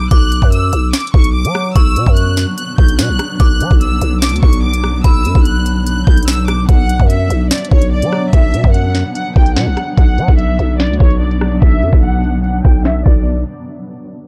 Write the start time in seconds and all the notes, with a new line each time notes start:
0.11 B1 F#3 B3 D4 D6 F#6, kick, closed hi-hat
0.32 closed hi-hat
0.42 F#2, kick
0.52 E6, closed hi-hat
0.73 B1, closed hi-hat
0.93 D6, snare, closed hi-hat
1.00 closed hi-hat
1.07 closed hi-hat
1.14 B1 C#6, kick
1.24 closed hi-hat
1.35 D6
1.45 F#3, closed hi-hat
1.55 cross-stick
1.75 B1 C#6 E6, kick, closed hi-hat
1.96 B2, closed hi-hat
2.06 F#2, kick
2.16 F#6, closed hi-hat
2.37 snare, closed hi-hat
2.58 F#6, closed hi-hat
2.78 B1 G6, kick
2.88 closed hi-hat
2.99 B2 F#6, snare
3.09 B1
3.19 cross-stick, closed hi-hat
3.40 B1 D6 F#6, kick, closed hi-hat
3.60 F#3, closed hi-hat
3.71 B1, kick
3.81 E6, closed hi-hat
4.01 B1, closed hi-hat
4.22 D6, snare, closed hi-hat
4.29 D2, closed hi-hat
4.36 closed hi-hat
4.42 B1 C#6, kick
4.53 closed hi-hat
4.63 D6
4.73 closed hi-hat
4.84 cross-stick
5.04 B1 B5 E6, kick, closed hi-hat
5.25 F#2, closed hi-hat
5.35 B1, kick
5.45 F#6, closed hi-hat
5.66 closed hi-hat
5.86 F#6, closed hi-hat
6.07 B1 G6, kick
6.17 closed hi-hat
6.23 closed hi-hat
6.28 E6, snare, closed hi-hat
6.33 closed hi-hat
6.48 D6, cross-stick, closed hi-hat
6.69 B1 F#3 B3 D4 F#5, kick, closed hi-hat
6.89 closed hi-hat
7.00 F#2, kick
7.10 E5, closed hi-hat
7.30 B1, closed hi-hat
7.51 D5, snare, closed hi-hat
7.58 closed hi-hat
7.65 closed hi-hat
7.71 B1 C#5, kick
7.82 closed hi-hat
7.92 D5
8.02 F#3, closed hi-hat
8.13 cross-stick
8.33 B1 E5, kick, closed hi-hat
8.54 B2, closed hi-hat
8.64 F#2, kick
8.73 F#5, closed hi-hat
8.95 snare, closed hi-hat
9.15 F#5, closed hi-hat
9.36 B1 G5, kick
9.46 closed hi-hat
9.56 B2 F#5, snare
9.67 B1
9.77 cross-stick, closed hi-hat
9.97 B1 F#3 D4 F#5, kick, closed hi-hat
10.18 F#3, closed hi-hat
10.28 B1, kick
10.39 E5, closed hi-hat
10.59 B1, closed hi-hat
10.79 D5, snare, closed hi-hat
10.87 D2, closed hi-hat
10.93 closed hi-hat
11.00 B1 C#5, kick
11.10 closed hi-hat
11.21 D5
11.31 closed hi-hat
11.41 cross-stick
11.62 B1 E5, kick, closed hi-hat
11.83 F#2, closed hi-hat
11.93 B1, kick
12.03 F#5, closed hi-hat
12.24 closed hi-hat
12.44 F#5, closed hi-hat
12.64 B1 G5, kick
12.75 closed hi-hat
12.80 closed hi-hat
12.85 E5, snare, closed hi-hat
12.90 closed hi-hat
13.06 B1 D5, kick, crash